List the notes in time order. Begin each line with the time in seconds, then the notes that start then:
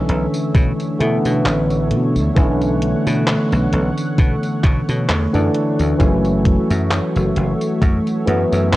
Already playing: D3 E3 A3 C#4 C#5 E5
0.09 B1, closed hi-hat
0.34 closed hi-hat, tambourine
0.55 B2, kick, closed hi-hat, tambourine
0.80 closed hi-hat, tambourine
0.99 B2 D3 E3 A3 B3, closed hi-hat
1.25 B2, closed hi-hat, tambourine
1.45 A1, clap, closed hi-hat, tambourine
1.70 closed hi-hat, tambourine
1.91 B2, closed hi-hat
2.16 D2, closed hi-hat, tambourine
2.35 B1 D3 E3 A3 C#4 F#5, kick, closed hi-hat, tambourine
2.61 closed hi-hat, tambourine
2.82 closed hi-hat
3.07 B2, closed hi-hat, tambourine
3.27 clap, closed hi-hat, tambourine
3.52 B1, closed hi-hat, tambourine
3.73 B1, closed hi-hat
3.98 closed hi-hat, tambourine
4.18 B2, kick, closed hi-hat, tambourine
4.43 closed hi-hat, tambourine
4.64 B2, kick, clap, closed hi-hat
4.89 B2, closed hi-hat, tambourine
5.09 E2, clap, closed hi-hat, tambourine
5.33 F#2 D3 E3 A3 D4, closed hi-hat, tambourine
5.55 closed hi-hat
5.79 D2, closed hi-hat, tambourine
5.98 F#1 E3 F#3 A3 C#4 F#4 E5, kick, closed hi-hat, tambourine
6.25 closed hi-hat, tambourine
6.45 kick, closed hi-hat
6.71 F#2, closed hi-hat, tambourine
6.91 clap, closed hi-hat, tambourine
7.16 F#1, closed hi-hat, tambourine
7.36 F#1, closed hi-hat
7.61 closed hi-hat, tambourine
7.82 F#2, kick, closed hi-hat, tambourine
8.07 closed hi-hat, tambourine
8.26 F#2 E3 F#3 A3 B3, closed hi-hat
8.52 F#2, closed hi-hat, tambourine
8.73 E1, clap, closed hi-hat, tambourine